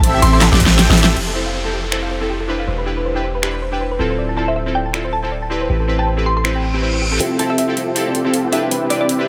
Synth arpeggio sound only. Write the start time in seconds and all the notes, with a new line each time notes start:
0.03 C5
0.14 G5
0.22 C5
0.33 A4
0.41 G4
0.52 A4
0.60 E5
0.71 C5
0.79 G4
0.90 E5
0.98 G4
1.08 A4
1.17 G4
1.27 A4
1.36 C5
1.46 F5
1.54 C5
1.65 A4
1.73 G4
1.84 A4
1.92 C5
2.03 F5
2.11 C5
2.21 A4
2.30 G4
2.40 A4
2.49 C5
2.59 F5
2.68 C5
2.78 B4
2.87 G4
2.97 B4
3.05 C5
3.16 G5
3.24 C5
3.35 B4
3.43 G4
3.54 B4
3.62 C5
3.73 G5
3.81 C5
3.91 B4
4.00 A4
4.10 C5
4.18 D5
4.29 A5
4.37 D5
4.48 C5
4.56 A4
4.67 C5
4.75 D5
4.86 A5
4.94 D5
5.05 C5
5.13 A4
5.24 C5
5.32 D5
5.42 A5
5.51 D5
5.61 C5
5.69 G4
5.80 A4
5.88 C5
5.99 G5
6.07 C5
6.18 A4
6.26 G4
6.37 A4
6.45 C5
6.55 G5
6.64 G5
6.74 G4
6.83 C5
6.93 C5
7.02 G4
7.12 A4